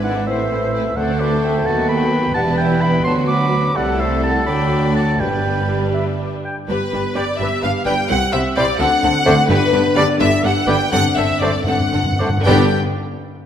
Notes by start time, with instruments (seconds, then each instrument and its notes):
Already playing: double bass section G#1, cello section G#2, bassoon E3, french horn section D4 E4, violin section B4, clarinet D5
0.04 viola section D3 E4, violin section G#4 D5, flute D5, oboe F#5
0.15 viola section E3 D4, violin section B4 E5
0.26 double bass section A1, cello section A2, bassoon E3, viola section A3 C4, french horn section C4, violin section E4 C5, clarinet C5, flute C5, oboe E5
0.39 viola section E3 A3, violin section A4 E5
0.50 viola section A3 C4, violin section E4 C5
0.62 viola section E3 A3, violin section A4 E5
0.73 viola section A3 C4, violin section E4 B4 C5
0.85 viola section E3 A3, violin section A4 E5
0.95 cello section D2, double bass section D2, timpani D3, viola section D3 D4, bassoon A3, french horn section C4 A4, violin section C4 A4 C5, clarinet C5, flute D5, oboe F#5
1.08 violin section D4
1.19 violin section F#4, flute B4, oboe D5
1.32 violin section A4
1.42 violin section F#4, flute E5, oboe G5
1.55 violin section D4
1.64 cello section D#2, double bass section D#2, viola section F#3 B3, french horn section B3, violin section B3 F#4 B4, clarinet B4, flute F#5, oboe A5
1.78 violin section D#4
1.88 violin section F#4, flute G5, oboe B5
2.01 violin section A4
2.12 violin section F#4
2.24 violin section D#4
2.34 double bass section E1, cello section E2, viola section E3, violin section G3 E4, bassoon G3, french horn section G4, flute F#5, oboe A5
2.46 violin section B3
2.57 violin section E4, flute E5, oboe G5
2.70 violin section G4
2.81 violin section E4, flute G5, oboe B5
2.94 violin section B3
3.04 cello section D2, double bass section D2, viola section F#3, bassoon F#3, violin section B3 F#4, french horn section F#4, flute A5, oboe C6
3.17 violin section D4
3.28 violin section F#4, flute B5, oboe D6
3.40 violin section D4
3.51 violin section B3
3.62 violin section D4
3.74 cello section C2, double bass section C2, bassoon G3, french horn section A3 G4, viola section A3 E4, violin section G4 A4, clarinet A4, flute D5, oboe F#5
4.00 flute C5, oboe E5
4.23 flute F#5, oboe A5
4.46 double bass section D2, cello section D2, bassoon F#3, viola section A3 D4, violin section F#4 A4 D5, french horn section F#4, flute G5, oboe B5
4.95 flute F#5, oboe A5
5.19 double bass section G1, timpani G2, cello section G2, viola section G3 D4, bassoon G3, french horn section B3 G4, violin section G4 B4, clarinet B4, flute D5, oboe G5
5.94 clarinet E5
6.18 clarinet D5
6.45 clarinet G5
6.69 double bass section G1, cello section G2, viola section G3 D4, french horn section B3 G4, violin section G4 B4, trumpet section B4, flute B4
6.92 double bass section G1, cello section G2, viola section G3 D4, violin section G4 B4
7.15 double bass section G1, cello section G2, viola section G3 D4, bassoon G3, violin section G4 B4 D5, clarinet D5, trumpet section D5, flute D5, oboe G5
7.38 double bass section G1, cello section G2, viola section G3 D4, french horn section B3 G4, violin section G4 B4 E5, flute E5, trumpet section E5
7.62 double bass section G1, cello section G2, viola section G3 D4, violin section G4 B4 F5, trumpet section F5, flute F5
7.85 double bass section G1, cello section G2, viola section G3 D4, bassoon G3, violin section G4 B4 G5, clarinet B4, trumpet section G5, oboe G5, flute G5
8.09 cello section C2, double bass section C2, viola section G3 C4, french horn section C4 G4, violin section E4 C5 F#5, trumpet section F#5, flute F#5
8.31 cello section C2, double bass section C2, viola section G3 C4, violin section E4 C5 E5, trumpet section E5, flute E5
8.56 cello section C2, double bass section C2, bassoon G3, viola section G3 C4, violin section E4 C5 D5, clarinet C5, trumpet section D5, flute D5, oboe G5
8.78 cello section D2, double bass section D2, viola section D3 C4, french horn section C4 D4, violin section D4 A4 F#5, trumpet section F#5, flute F#5
9.02 double bass section D2, cello section D2, viola section D3 C4, violin section D4 A4
9.25 cello section D2, double bass section D2, viola section D3 C4, bassoon A3, violin section D4 A4, clarinet C5, oboe D5
9.48 double bass section G1, cello section G2, timpani G2, viola section D3 B3, french horn section B3 D4, violin section D4 G4 B4, trumpet section B4, flute B4
9.72 double bass section G1, cello section G2, viola section D3 B3, violin section D4 G4
9.96 double bass section G1, cello section G2, viola section D3 B3, bassoon G3, violin section D4 G4 D5, clarinet B4, flute D5, trumpet section D5, oboe D5
10.19 double bass section G1, cello section G2, viola section D3 B3, violin section D4 G4 E5, trumpet section E5, flute E5
10.43 double bass section G1, cello section G2, viola section D3 B3, violin section D4 G4 F#5, trumpet section F#5, flute F#5
10.67 double bass section G1, cello section G2, viola section D3 B3, bassoon G3, violin section D4 G4 G5, clarinet B4, oboe D5, trumpet section G5, flute G5
10.91 double bass section G1, timpani G2, cello section G2, viola section D3 C4, french horn section C4 D4, violin section D4 A4 F#5, trumpet section F#5, flute F#5
11.00 timpani G2
11.08 timpani G2
11.15 double bass section G1, cello section G2, viola section D3 C4, violin section D4 A4 E5, trumpet section E5, flute E5
11.23 timpani G2
11.32 timpani G2
11.40 double bass section G1, timpani G2, cello section G2, viola section D3 C4, bassoon A3, violin section D4 A4 D5, clarinet C5, trumpet section D5, flute D5, oboe D5
11.48 timpani G2
11.55 timpani G2
11.64 double bass section G1, timpani G2, cello section G2, viola section D3 C4, french horn section C4 D4, violin section D4 A4 F#5, flute F#5, trumpet section F#5
11.72 timpani G2
11.80 timpani G2
11.88 timpani G2
11.93 double bass section G1, cello section G2, timpani G2, viola section D3 C4, violin section D4 A4
12.04 timpani G2
12.12 timpani G2
12.19 double bass section G1, cello section G2, timpani G2, viola section D3 C4, bassoon A3, violin section D4 A4, clarinet C5, oboe D5
12.29 timpani G2
12.37 timpani G2
12.45 double bass section G1, timpani G2, cello section G2, viola section D3 B3, bassoon G3, french horn section B3 D4, violin section D4 G4 G5, trumpet section G4, clarinet B4, oboe D5, flute D5